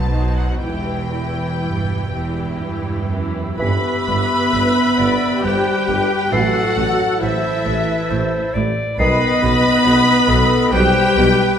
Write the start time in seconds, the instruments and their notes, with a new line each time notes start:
Already playing: double bass section B1, cello section B2, viola section F#3 D#4, violin section F#4 C5 A5
0.11 viola section F#3 D#4, violin section F#4 C5
0.38 violin section F#5
0.61 double bass section E1, cello section E2, viola section E3 E4, violin section G4 B4 G5
1.12 viola section E3 E4, violin section G4 B4
1.63 double bass section E1, cello section G2
2.11 cello section E2, viola section E3 E4, violin section G4 B4
2.62 double bass section E1, cello section G2
3.11 cello section F#2, viola section E3 E4, violin section G4 B4
3.59 double bass section G1, tuba G1, cello section G2, bassoon E3, french horn section B3, clarinet G4, viola section B4, oboe E5, violin section B5, flute B6
4.08 tuba G1, double bass section G1, cello section G2
4.53 tuba G1, double bass section G1, cello section G2, clarinet B4
4.98 tuba G1, double bass section G1, cello section G2, clarinet D5
5.43 tuba G1, double bass section G1, cello section G2, french horn section G3, viola section G4, oboe B4, clarinet C5, violin section G5
5.88 tuba G1, double bass section G1, cello section G2, clarinet B4
6.31 tuba A1, double bass section A1, cello section A2, bassoon E3, french horn section F#3, viola section F#4, oboe A4, clarinet A4, violin section F#5, flute C7
6.76 tuba A1, double bass section A1, cello section A2
7.21 tuba A1, double bass section A1, cello section A2, french horn section E3, viola section E4, oboe A4, clarinet C5, violin section E5
7.66 tuba A1, double bass section A1, cello section A2, clarinet B4
8.10 tuba A1, double bass section A1, cello section A2, clarinet C5
8.54 double bass section A1, tuba A1, cello section A2, clarinet D5
8.98 tuba B1, double bass section B1, cello section B2, bassoon D#3, french horn section B3, viola section B4, clarinet D#5, oboe D#5, violin section B5, flute C7
9.43 double bass section B1, tuba B1, cello section B2
9.85 double bass section B1, tuba B1, cello section B2, clarinet B4
10.28 double bass section B1, tuba B1, cello section B2, clarinet A4
10.72 double bass section B1, tuba B1, cello section B2, french horn section G3, viola section G4, oboe B4, clarinet C5, violin section G5
11.16 double bass section B1, tuba B1, cello section B2, clarinet B4